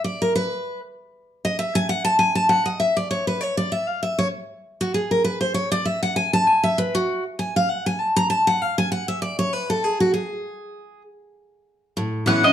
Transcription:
0.04 D5
0.22 A#4
0.36 B4
1.45 D#5
1.59 E5
1.75 G#5
1.89 F#5
2.05 A5
2.19 G#5
2.35 A5
2.49 F#5
2.66 D#5
2.80 E5
2.97 D5
3.11 C#5
3.27 B4
3.41 C#5
3.57 D5
3.72 E5
3.88 F5
4.03 E5
4.19 C#5
4.81 F#4
4.94 G#4
5.11 A#4
5.24 B4
5.41 C5
5.54 C#5
5.72 D5
5.85 E5
6.03 F#5
6.16 G#5
6.33 A5
6.47 G#5
6.64 E5
6.78 B4
6.95 F#4
7.39 G#5
7.56 F5
7.70 F#5
7.86 G#5
8.00 A5
8.16 A#5
8.30 A5
8.47 F#5
8.62 F5
8.78 G#5
8.92 F#5
9.08 E5
9.22 D5
9.39 C#5
9.53 B4
9.70 A4
9.84 G#4
10.00 F#4
10.14 G#4
11.97 A2
12.26 E3 B3 C#4 E4 F#5
12.43 C#4 E4 D#5

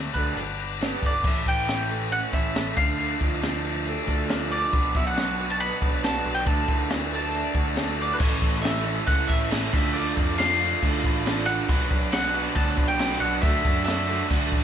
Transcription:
Already playing: F#3 A3 D4 C#5
0.14 D2 D3 F#3 A3 D4 B4, kick, closed hi-hat
0.18 A3
0.36 G1 B3 D4 G4, closed hi-hat
0.58 D4 G4, closed hi-hat
0.81 D3 G3 B3 D4 G4, snare, closed hi-hat
1.02 G1 D5, kick, closed hi-hat
1.23 A1 A2 E3 A3 C#4, kick, crash
1.28 E5
1.46 A1 E3 A3 C#4 G5, kick, open hi-hat
1.68 E3 A3 C#4, snare, open hi-hat
1.89 A3 C#4, open hi-hat
2.11 C#4 F#5, open hi-hat
2.33 A1 E4 E5, kick, open hi-hat
2.54 E3 A3 C#4, snare, open hi-hat
2.76 D2 D3 F3 A3 D4 F5, kick, open hi-hat
2.99 D3 F3 A3 D4, open hi-hat
3.19 D2 F3 A3 D4, kick, open hi-hat
3.42 D3 F3 A3 D4, snare, open hi-hat
3.63 F3 A3 D4, open hi-hat
3.87 A3, open hi-hat
4.07 D2 D4, kick, open hi-hat
4.28 F3 A3 D4, snare, open hi-hat
4.51 D3 A3 D4 D5, open hi-hat
4.73 B1 B2 F#3 B3 D4 F#4 B4 F#5, kick, open hi-hat
4.94 B1 F#3 B3 D4 E5, kick, open hi-hat
5.07 F#5
5.16 B2 F#3 B3 D4, snare, open hi-hat
5.38 F#3 B3 D4, open hi-hat
5.50 A5
5.60 B3 B5, open hi-hat
5.82 B1 D4, kick, open hi-hat
6.03 F#3 B3 D4 A5, snare, open hi-hat
6.25 B1 B2 B3 D4, open hi-hat
6.35 G5
6.46 D2 D3 F#3 A3 D4 A4 E5 A5, kick, open hi-hat
6.68 E3 A3 D4, kick, open hi-hat
6.90 E3 F#3 A3 D4, snare, open hi-hat
7.11 A3 D4, open hi-hat
7.15 A3 A5
7.31 D4, open hi-hat
7.53 D2 F#4, kick, open hi-hat
7.76 F#3 A3 D4, snare, open hi-hat
7.98 E3 A3 D4 D5, open hi-hat
8.13 B4
8.18 A1 A2 E3 A3 C#4 E4 A4 C#5 E5, kick, crash
8.23 C#4
8.42 A1, kick, crash
8.62 A2 E3 A3 C#4 E4 E5, snare, crash
8.84 A2 E3 A3 C#4 E4, crash
9.06 C#2 A2 E3 A3 C#4 E4 F#5, kick, crash
9.28 A1 E5, kick, crash
9.51 A2 E3 A3 C#4 E4, snare, crash
9.72 D2 D3 F3 A3 D4 F4 A4 E5 F5, kick, crash
9.93 D3 F3 A3 D4 F4 D5, crash
10.17 F2, kick, crash
10.36 D3 F3 A3 D4 F4 F5, snare, crash
10.60 D3 F3 A3 D4 F4, crash
10.82 D2 D3 F3 A3 D4 F4, kick, crash
11.03 A1, kick, crash
11.26 D3 F3 A3 D4 F4, snare, crash
11.46 D3 F3 A3 D4 F4 F#5, crash
11.68 B1 B2 F#3 B3 D4 F#4 B4 D5, kick, crash
11.91 B1, kick, crash
12.12 B2 F#3 B3 D4 F#4 F#5, snare, crash
12.34 B2 F#3 B3 D4 F#4, crash
12.55 D2 B2 F#3 B3 D4 F#4 A5, kick, crash
12.77 B1, kick, crash
12.88 G5
12.99 B2 F#3 B3 D4 F#4, snare, crash
13.12 snare
13.20 B1 B2 F#3 B3 D4 F#4 F#5, crash
13.41 D2 D3 F#3 A3 D4 F#4 A4 E5, kick, crash
13.65 F#2, kick, crash
13.85 D3 F#3 A3 D4 F#4 E5, snare, crash
14.06 D3 F#3 A3 D4, crash
14.10 D4 F#4
14.27 D2 D3 F#3 A3 D4 F#4, kick, crash
14.52 A1, kick, crash

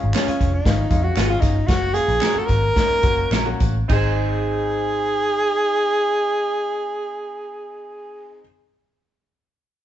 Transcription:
Already playing: G#3 C#4 F4
0.04 G#1
0.14 C#4 F4 G#4, snare, clap, closed hi-hat, tambourine
0.27 G#3 C#4 F4, muted picked electric bass stroke, closed hi-hat
0.41 F1, kick, closed hi-hat
0.54 D#4
0.65 G#1 G#3 C#4 F4, kick, snare, closed hi-hat, tambourine
0.90 F2 G#3 C#4 F4, kick, closed hi-hat, tambourine
1.03 F#4
1.16 G#1 C#4 F4 G#4, snare, clap, closed hi-hat, tambourine
1.29 G#3 C#4 F4
1.41 G1 D#4, kick, snare, closed hi-hat, tambourine
1.67 F#1 A#3 C#4 F#4, kick, snare, closed hi-hat, tambourine
1.94 A#3 C#4 F4 G#4, closed hi-hat, tambourine
2.08 A#1, closed hi-hat
2.21 C#4 F#4 A#4, snare, clap, closed hi-hat, tambourine
2.33 A#3 C#4 F#4, muted picked electric bass stroke
2.38 A4
2.46 G#1 A#4, kick, closed hi-hat, tambourine
2.76 A#3 C#4 D#4, kick, snare, closed hi-hat, tambourine
2.90 muted picked electric bass stroke
3.03 F#1 A#3 C#4 F#4, kick, closed hi-hat, tambourine
3.31 A#1 C#4 F#4 A#4, snare, clap, closed hi-hat, tambourine
3.45 A#3 C#4 F#4
3.60 A1, kick, closed hi-hat, tambourine
3.88 G#1 C4 D#4 G#4, kick, tambourine, crash
3.92 G#4 C5

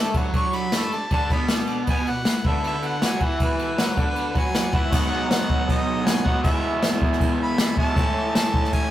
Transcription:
Already playing: A3 A4 D5
0.14 F#3 D4 F#4 A4 B4, kick, ride
0.33 D4 A4 D5 C#6, kick, ride
0.51 D4 A4 D5, ride
0.56 B5
0.72 A3 D4 A4 D5, snare, ride
0.91 D4 A4 D5 A5, muted overdriven electric guitar stroke, ride
1.10 D3 D4 A4 B4 A5, kick, ride
1.30 B2 B3 D4 A4 E5 B5, kick, ride
1.48 D4 A4 D5, snare, ride
1.67 D4 A4 D5, ride
1.85 B3 F#4 B4, kick, ride
1.89 B2 B3 G#5
2.07 B2 B3 F#4 D5 F#5, ride
2.25 B3 F#4 B4, snare, ride
2.43 D3 B3 F#4 B4 E5, kick, ride
2.48 D4
2.62 B3 F#4 B4, ride
2.67 E5
2.82 B3 F#4 B4, ride
2.87 F#5
3.01 F#3 B3 F#4 D5, snare, ride
3.05 G#5
3.20 E3 B3 E4 F#4 B4 F#5, kick, ride
3.38 B3 F#4 B4, kick, ride
3.42 B4
3.57 B3 F#4 A4, ride
3.77 F#3 B3 F#4 D5, snare, ride
3.96 D3 B3 D4 F#4 B4, kick, ride
4.15 B3 F#4 B4, ride
4.34 F#3 B3 F#4 B4, kick, ride
4.39 G#5
4.54 B3 F#4 D5, snare, ride
4.72 E3 B3 E4 F#4 B4 F#5, kick, ride
4.90 B2 F#3 B3 D#4 F#4, kick, crash
4.95 F#4 B4
5.13 D#4 F#4 G#4
5.30 D#4 F#4 B4 F#5, snare, crash
5.46 D#4 F#4 B4, kick
5.66 D#4 F#4 B4, kick, crash
5.71 D#5
5.85 D#4 F#4 G#4
6.04 D#4 F#4 B4 G#5, snare, crash
6.24 B3 D#4 F#4 B4 F#5, kick
6.29 B2 F#3
6.43 E2 B2 E3 G#3 E4 G#4 B4 E5, kick, crash
6.47 B3 E4
6.62 E4 G#4 B4
6.82 E4 G#4 C#5, snare, crash
7.01 E4 G#4 B4, kick
7.13 snare
7.19 E4 G#4 B4, kick, crash
7.38 E4 G#4 B4
7.43 B5
7.58 E4 G#4 B4, snare, crash
7.77 B2 E3 G#3 B3 E4 G#4 C#5 A5, kick
7.82 E2
7.93 A2 E4 A4 C#5, kick, crash
7.97 E3 A3 C#4 E4
8.13 E4 A4 C#5
8.32 E4 A4 C#5 A5, snare, crash
8.54 E4 A4 D#5, kick
8.65 snare
8.72 E4 A4 C#5 G#5, kick, crash

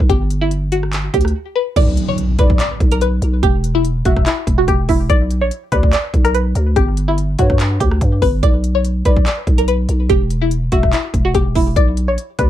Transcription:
0.10 G1 G4, kick, closed hi-hat
0.30 closed hi-hat
0.41 E4
0.51 closed hi-hat
0.72 F#4, closed hi-hat
0.83 cross-stick
0.93 clap, closed hi-hat
1.14 D2 G4, kick, closed hi-hat
1.21 closed hi-hat
1.25 cross-stick, closed hi-hat
1.56 B4
1.76 B1 D5, kick, closed hi-hat, crash, impact
1.97 closed hi-hat
2.08 C#5
2.18 closed hi-hat
2.39 B1 B4 D5, kick, closed hi-hat
2.50 kick
2.60 D5, clap, closed hi-hat
2.80 B1, kick, closed hi-hat
2.91 A#4, closed hi-hat
3.01 B4, closed hi-hat
3.22 B1, closed hi-hat
3.43 E1 G4, kick, closed hi-hat
3.64 closed hi-hat
3.75 E4
3.85 closed hi-hat
4.05 E1 F#4 E5, kick, closed hi-hat
4.16 kick, cross-stick
4.26 E4, clap, closed hi-hat
4.47 E1, kick, closed hi-hat
4.58 F#4
4.68 E1 G4, kick, closed hi-hat
4.89 E1 E4, kick, open hi-hat
5.10 B1 D5, kick, closed hi-hat
5.31 closed hi-hat
5.41 A#1 C#5
5.51 closed hi-hat
5.72 D2 B4 D5, kick, closed hi-hat
5.83 kick
5.93 D5, clap, closed hi-hat
6.14 B1, kick, closed hi-hat
6.25 A#4, closed hi-hat
6.34 B4, closed hi-hat
6.55 D2, closed hi-hat
6.76 G1 G4, kick, closed hi-hat
6.97 closed hi-hat
7.08 E4
7.18 closed hi-hat
7.39 G2 F#4 C#5, kick, closed hi-hat
7.50 kick, cross-stick
7.60 clap, closed hi-hat
7.80 D2 G4, kick, closed hi-hat
7.91 cross-stick
8.01 G2, kick, closed hi-hat
8.22 G1 B4, kick, open hi-hat
8.43 B1 D5, kick, closed hi-hat
8.64 closed hi-hat
8.75 C#5
8.85 closed hi-hat
9.05 B1 B4 D5, kick, closed hi-hat
9.17 kick
9.26 D5, clap, closed hi-hat
9.47 B1, kick, closed hi-hat
9.58 A#4, closed hi-hat
9.68 B4, closed hi-hat
9.89 B1, closed hi-hat
10.10 E1 G4, kick, closed hi-hat
10.30 closed hi-hat
10.41 E4
10.51 closed hi-hat
10.72 E1 F#4 E5, kick, closed hi-hat
10.83 kick, cross-stick
10.93 E4, clap, closed hi-hat
11.14 E1, kick, closed hi-hat
11.25 F#4
11.35 E1 G4, kick, closed hi-hat
11.55 E1 E4, kick, open hi-hat
11.76 B1 D5, kick, closed hi-hat
11.97 closed hi-hat
12.08 A#1 C#5
12.18 closed hi-hat
12.39 D2 B4 D5, kick, closed hi-hat

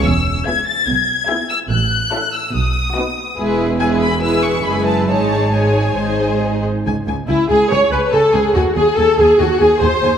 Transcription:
0.04 E1 E2 E6
0.46 B3 E4 G#4 E5 G#6
0.66 A6
0.87 B1 B2 G#6
1.29 B3 E4 G#4 E5
1.49 E6
1.70 A1 A2 F#6
2.13 C#4 E4 A4 E5
2.34 E6
2.54 B1 B2 D#6
2.96 B3 D#4 F#4 B4
3.37 E1 E2 G#3 E4 G#4 B4
3.79 G#3 E4 G#4 B4 G#5
4.00 B5
4.22 G#3 E4 G#4 B4 E6
4.43 C#6
4.64 F#1 F#2 G#3 E4 G#4 B4 B5
4.86 A5
5.08 G#1 G#2 G#3 D#4 G#4 C#5 A5
5.53 G#3 D#4 G#4 C#5 G#5
5.98 G#1 G#2 G#3 D#4 G#4 C5
6.86 C#2 G#5
7.07 C#2 G#5
7.28 C#2 E4 G#5
7.49 C#2 G#4 G#5
7.70 C#2 C#5 G#5
7.91 C#2 B4 G#5
8.12 C#2 A4 G#5
8.34 C#2 G#4 G#5
8.54 D#2 F#4 G#5
8.75 D#2 G#4 G#5
8.97 D#2 A4 G#5
9.18 D#2 G#4 G#5
9.39 D#2 F#4 G#5
9.60 D#2 G#4 G#5
9.81 D#2 C5 G#5
10.03 D#2 G#5

